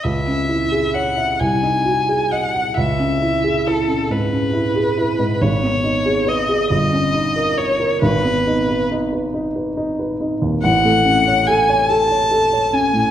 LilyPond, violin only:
\new Staff \with { instrumentName = "Violin" } { \time 6/8 \key cis \minor \tempo 4. = 46 e''4 fis''8 gis''4 fis''8 | e''4 a'8 b'4. | cis''4 dis''8 dis''4 cis''8 | b'4 r2 |
fis''4 gis''8 a''4 gis''8 | }